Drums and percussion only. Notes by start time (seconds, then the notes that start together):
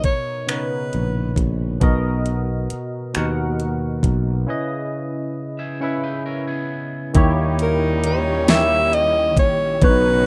0.04 kick, closed hi-hat
0.49 finger snap, closed hi-hat
0.93 closed hi-hat
1.36 kick, closed hi-hat
1.81 kick, closed hi-hat
2.26 closed hi-hat
2.70 closed hi-hat
3.15 finger snap, closed hi-hat
3.60 closed hi-hat
4.03 kick, closed hi-hat
7.15 kick, closed hi-hat
7.59 closed hi-hat
8.04 closed hi-hat
8.48 snare, closed hi-hat
8.93 closed hi-hat
9.37 kick, closed hi-hat
9.82 kick, closed hi-hat